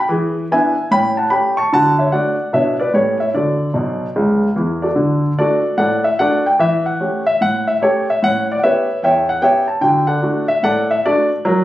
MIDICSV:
0, 0, Header, 1, 2, 480
1, 0, Start_track
1, 0, Key_signature, 2, "major"
1, 0, Tempo, 405680
1, 121, Time_signature, 4, 2, 24, 8
1, 13776, End_track
2, 0, Start_track
2, 0, Title_t, "Grand piano"
2, 0, Program_c, 0, 0
2, 0, Note_on_c, 0, 79, 58
2, 106, Note_on_c, 0, 52, 79
2, 120, Note_off_c, 0, 79, 0
2, 134, Note_on_c, 0, 68, 49
2, 394, Note_off_c, 0, 68, 0
2, 520, Note_off_c, 0, 52, 0
2, 610, Note_on_c, 0, 59, 53
2, 616, Note_on_c, 0, 80, 80
2, 618, Note_on_c, 0, 62, 53
2, 624, Note_on_c, 0, 64, 54
2, 624, Note_on_c, 0, 76, 61
2, 871, Note_off_c, 0, 59, 0
2, 877, Note_off_c, 0, 62, 0
2, 881, Note_off_c, 0, 64, 0
2, 1017, Note_off_c, 0, 80, 0
2, 1059, Note_off_c, 0, 76, 0
2, 1079, Note_on_c, 0, 45, 75
2, 1084, Note_on_c, 0, 83, 106
2, 1099, Note_on_c, 0, 79, 72
2, 1107, Note_on_c, 0, 61, 51
2, 1346, Note_off_c, 0, 83, 0
2, 1364, Note_off_c, 0, 61, 0
2, 1379, Note_off_c, 0, 79, 0
2, 1388, Note_on_c, 0, 81, 69
2, 1404, Note_on_c, 0, 78, 53
2, 1487, Note_off_c, 0, 45, 0
2, 1533, Note_off_c, 0, 81, 0
2, 1535, Note_on_c, 0, 57, 39
2, 1542, Note_on_c, 0, 83, 78
2, 1548, Note_on_c, 0, 61, 40
2, 1550, Note_on_c, 0, 67, 47
2, 1555, Note_off_c, 0, 78, 0
2, 1559, Note_on_c, 0, 79, 63
2, 1806, Note_off_c, 0, 57, 0
2, 1813, Note_off_c, 0, 83, 0
2, 1816, Note_off_c, 0, 61, 0
2, 1817, Note_off_c, 0, 67, 0
2, 1848, Note_off_c, 0, 79, 0
2, 1860, Note_on_c, 0, 85, 76
2, 1874, Note_on_c, 0, 81, 62
2, 2009, Note_off_c, 0, 85, 0
2, 2031, Note_off_c, 0, 81, 0
2, 2042, Note_on_c, 0, 50, 78
2, 2053, Note_on_c, 0, 81, 94
2, 2065, Note_on_c, 0, 78, 63
2, 2069, Note_on_c, 0, 66, 51
2, 2311, Note_off_c, 0, 81, 0
2, 2325, Note_off_c, 0, 66, 0
2, 2342, Note_off_c, 0, 78, 0
2, 2351, Note_on_c, 0, 76, 53
2, 2364, Note_on_c, 0, 73, 52
2, 2449, Note_off_c, 0, 50, 0
2, 2495, Note_off_c, 0, 76, 0
2, 2510, Note_on_c, 0, 57, 38
2, 2511, Note_on_c, 0, 78, 71
2, 2514, Note_on_c, 0, 62, 43
2, 2514, Note_on_c, 0, 66, 48
2, 2516, Note_off_c, 0, 73, 0
2, 2530, Note_on_c, 0, 74, 55
2, 2777, Note_off_c, 0, 57, 0
2, 2780, Note_off_c, 0, 62, 0
2, 2780, Note_off_c, 0, 66, 0
2, 2923, Note_off_c, 0, 78, 0
2, 2972, Note_off_c, 0, 74, 0
2, 2993, Note_on_c, 0, 59, 34
2, 2994, Note_on_c, 0, 47, 60
2, 3002, Note_on_c, 0, 76, 71
2, 3007, Note_on_c, 0, 62, 41
2, 3014, Note_on_c, 0, 66, 35
2, 3020, Note_on_c, 0, 73, 48
2, 3259, Note_off_c, 0, 59, 0
2, 3265, Note_off_c, 0, 76, 0
2, 3273, Note_off_c, 0, 62, 0
2, 3275, Note_off_c, 0, 66, 0
2, 3299, Note_off_c, 0, 73, 0
2, 3307, Note_on_c, 0, 74, 61
2, 3325, Note_on_c, 0, 71, 54
2, 3405, Note_off_c, 0, 47, 0
2, 3453, Note_off_c, 0, 74, 0
2, 3475, Note_on_c, 0, 45, 64
2, 3476, Note_off_c, 0, 71, 0
2, 3482, Note_on_c, 0, 59, 39
2, 3483, Note_on_c, 0, 73, 67
2, 3489, Note_on_c, 0, 64, 30
2, 3489, Note_on_c, 0, 67, 32
2, 3496, Note_on_c, 0, 69, 45
2, 3501, Note_on_c, 0, 61, 45
2, 3746, Note_off_c, 0, 59, 0
2, 3746, Note_off_c, 0, 73, 0
2, 3750, Note_off_c, 0, 64, 0
2, 3751, Note_off_c, 0, 67, 0
2, 3759, Note_off_c, 0, 61, 0
2, 3777, Note_off_c, 0, 69, 0
2, 3787, Note_on_c, 0, 76, 63
2, 3801, Note_on_c, 0, 73, 43
2, 3885, Note_off_c, 0, 45, 0
2, 3933, Note_off_c, 0, 76, 0
2, 3952, Note_on_c, 0, 50, 51
2, 3954, Note_off_c, 0, 73, 0
2, 3959, Note_on_c, 0, 74, 64
2, 3976, Note_on_c, 0, 66, 39
2, 3976, Note_on_c, 0, 69, 43
2, 4236, Note_off_c, 0, 66, 0
2, 4364, Note_off_c, 0, 50, 0
2, 4422, Note_on_c, 0, 35, 50
2, 4423, Note_on_c, 0, 47, 59
2, 4789, Note_off_c, 0, 35, 0
2, 4790, Note_off_c, 0, 47, 0
2, 4921, Note_on_c, 0, 49, 44
2, 4922, Note_on_c, 0, 37, 58
2, 5184, Note_off_c, 0, 74, 0
2, 5281, Note_off_c, 0, 49, 0
2, 5282, Note_off_c, 0, 37, 0
2, 5361, Note_off_c, 0, 69, 0
2, 5395, Note_on_c, 0, 52, 56
2, 5396, Note_on_c, 0, 40, 52
2, 5706, Note_on_c, 0, 74, 49
2, 5719, Note_on_c, 0, 69, 44
2, 5720, Note_on_c, 0, 66, 43
2, 5757, Note_off_c, 0, 52, 0
2, 5758, Note_off_c, 0, 40, 0
2, 5864, Note_on_c, 0, 50, 65
2, 5880, Note_off_c, 0, 66, 0
2, 5897, Note_on_c, 0, 66, 36
2, 6157, Note_off_c, 0, 66, 0
2, 6261, Note_off_c, 0, 74, 0
2, 6279, Note_off_c, 0, 50, 0
2, 6320, Note_off_c, 0, 69, 0
2, 6371, Note_on_c, 0, 57, 37
2, 6372, Note_on_c, 0, 62, 41
2, 6372, Note_on_c, 0, 74, 71
2, 6386, Note_on_c, 0, 69, 60
2, 6390, Note_on_c, 0, 66, 57
2, 6633, Note_off_c, 0, 57, 0
2, 6634, Note_off_c, 0, 62, 0
2, 6776, Note_off_c, 0, 74, 0
2, 6821, Note_off_c, 0, 69, 0
2, 6823, Note_off_c, 0, 66, 0
2, 6834, Note_on_c, 0, 45, 59
2, 6836, Note_on_c, 0, 78, 77
2, 6852, Note_on_c, 0, 69, 54
2, 6859, Note_on_c, 0, 74, 54
2, 7102, Note_off_c, 0, 78, 0
2, 7136, Note_off_c, 0, 69, 0
2, 7140, Note_off_c, 0, 74, 0
2, 7150, Note_on_c, 0, 76, 68
2, 7246, Note_off_c, 0, 45, 0
2, 7295, Note_off_c, 0, 76, 0
2, 7326, Note_on_c, 0, 78, 83
2, 7328, Note_on_c, 0, 57, 42
2, 7335, Note_on_c, 0, 62, 39
2, 7335, Note_on_c, 0, 66, 37
2, 7348, Note_on_c, 0, 69, 52
2, 7349, Note_on_c, 0, 74, 62
2, 7588, Note_off_c, 0, 78, 0
2, 7591, Note_off_c, 0, 57, 0
2, 7596, Note_off_c, 0, 62, 0
2, 7596, Note_off_c, 0, 66, 0
2, 7624, Note_off_c, 0, 69, 0
2, 7625, Note_off_c, 0, 74, 0
2, 7648, Note_on_c, 0, 79, 68
2, 7786, Note_off_c, 0, 79, 0
2, 7801, Note_on_c, 0, 52, 77
2, 7812, Note_on_c, 0, 76, 81
2, 8072, Note_off_c, 0, 76, 0
2, 8115, Note_on_c, 0, 78, 61
2, 8210, Note_off_c, 0, 52, 0
2, 8282, Note_on_c, 0, 57, 38
2, 8289, Note_on_c, 0, 61, 43
2, 8294, Note_on_c, 0, 67, 44
2, 8522, Note_off_c, 0, 78, 0
2, 8547, Note_off_c, 0, 57, 0
2, 8552, Note_off_c, 0, 61, 0
2, 8555, Note_off_c, 0, 67, 0
2, 8596, Note_on_c, 0, 76, 77
2, 8739, Note_off_c, 0, 76, 0
2, 8768, Note_on_c, 0, 45, 49
2, 8776, Note_on_c, 0, 78, 90
2, 9035, Note_off_c, 0, 78, 0
2, 9081, Note_on_c, 0, 76, 73
2, 9174, Note_off_c, 0, 45, 0
2, 9222, Note_off_c, 0, 76, 0
2, 9247, Note_on_c, 0, 61, 43
2, 9249, Note_on_c, 0, 57, 42
2, 9258, Note_on_c, 0, 73, 74
2, 9267, Note_on_c, 0, 67, 57
2, 9269, Note_on_c, 0, 69, 59
2, 9510, Note_off_c, 0, 61, 0
2, 9512, Note_off_c, 0, 57, 0
2, 9516, Note_off_c, 0, 73, 0
2, 9545, Note_off_c, 0, 67, 0
2, 9546, Note_off_c, 0, 69, 0
2, 9583, Note_on_c, 0, 76, 73
2, 9715, Note_off_c, 0, 76, 0
2, 9732, Note_on_c, 0, 45, 66
2, 9747, Note_on_c, 0, 78, 94
2, 9761, Note_on_c, 0, 61, 50
2, 10001, Note_off_c, 0, 78, 0
2, 10014, Note_off_c, 0, 61, 0
2, 10077, Note_on_c, 0, 74, 64
2, 10136, Note_off_c, 0, 45, 0
2, 10153, Note_off_c, 0, 74, 0
2, 10166, Note_on_c, 0, 78, 53
2, 10214, Note_off_c, 0, 78, 0
2, 10215, Note_on_c, 0, 59, 39
2, 10217, Note_on_c, 0, 76, 84
2, 10219, Note_on_c, 0, 61, 42
2, 10231, Note_on_c, 0, 73, 59
2, 10232, Note_on_c, 0, 67, 52
2, 10239, Note_on_c, 0, 71, 64
2, 10476, Note_off_c, 0, 59, 0
2, 10479, Note_off_c, 0, 61, 0
2, 10488, Note_off_c, 0, 67, 0
2, 10619, Note_off_c, 0, 76, 0
2, 10665, Note_off_c, 0, 73, 0
2, 10669, Note_off_c, 0, 71, 0
2, 10682, Note_on_c, 0, 40, 53
2, 10695, Note_on_c, 0, 79, 78
2, 10702, Note_on_c, 0, 73, 59
2, 10702, Note_on_c, 0, 76, 70
2, 10954, Note_off_c, 0, 79, 0
2, 10982, Note_off_c, 0, 73, 0
2, 10982, Note_off_c, 0, 76, 0
2, 10994, Note_on_c, 0, 78, 81
2, 11090, Note_off_c, 0, 40, 0
2, 11139, Note_off_c, 0, 78, 0
2, 11143, Note_on_c, 0, 59, 47
2, 11147, Note_on_c, 0, 79, 86
2, 11148, Note_on_c, 0, 61, 46
2, 11156, Note_on_c, 0, 67, 54
2, 11166, Note_on_c, 0, 76, 59
2, 11172, Note_on_c, 0, 73, 67
2, 11412, Note_off_c, 0, 59, 0
2, 11416, Note_off_c, 0, 61, 0
2, 11418, Note_off_c, 0, 79, 0
2, 11422, Note_off_c, 0, 67, 0
2, 11450, Note_on_c, 0, 81, 63
2, 11453, Note_off_c, 0, 76, 0
2, 11456, Note_off_c, 0, 73, 0
2, 11604, Note_off_c, 0, 81, 0
2, 11607, Note_on_c, 0, 50, 70
2, 11613, Note_on_c, 0, 79, 84
2, 11633, Note_on_c, 0, 66, 49
2, 11890, Note_off_c, 0, 79, 0
2, 11900, Note_off_c, 0, 66, 0
2, 11916, Note_on_c, 0, 78, 73
2, 11926, Note_on_c, 0, 69, 58
2, 11931, Note_on_c, 0, 74, 45
2, 12030, Note_off_c, 0, 50, 0
2, 12097, Note_on_c, 0, 66, 45
2, 12099, Note_on_c, 0, 62, 51
2, 12101, Note_on_c, 0, 57, 52
2, 12340, Note_off_c, 0, 78, 0
2, 12368, Note_off_c, 0, 66, 0
2, 12369, Note_off_c, 0, 62, 0
2, 12371, Note_off_c, 0, 57, 0
2, 12385, Note_off_c, 0, 69, 0
2, 12388, Note_off_c, 0, 74, 0
2, 12403, Note_on_c, 0, 76, 83
2, 12560, Note_off_c, 0, 76, 0
2, 12576, Note_on_c, 0, 45, 59
2, 12585, Note_on_c, 0, 78, 91
2, 12593, Note_on_c, 0, 69, 66
2, 12593, Note_on_c, 0, 74, 61
2, 12856, Note_off_c, 0, 78, 0
2, 12886, Note_off_c, 0, 69, 0
2, 12886, Note_off_c, 0, 74, 0
2, 12905, Note_on_c, 0, 76, 72
2, 12995, Note_off_c, 0, 45, 0
2, 13052, Note_off_c, 0, 76, 0
2, 13076, Note_on_c, 0, 57, 39
2, 13081, Note_on_c, 0, 74, 79
2, 13084, Note_on_c, 0, 62, 45
2, 13087, Note_on_c, 0, 66, 54
2, 13091, Note_on_c, 0, 69, 53
2, 13342, Note_off_c, 0, 57, 0
2, 13345, Note_off_c, 0, 74, 0
2, 13347, Note_off_c, 0, 62, 0
2, 13373, Note_off_c, 0, 66, 0
2, 13375, Note_off_c, 0, 69, 0
2, 13548, Note_on_c, 0, 54, 89
2, 13568, Note_on_c, 0, 70, 52
2, 13776, Note_off_c, 0, 54, 0
2, 13776, Note_off_c, 0, 70, 0
2, 13776, End_track
0, 0, End_of_file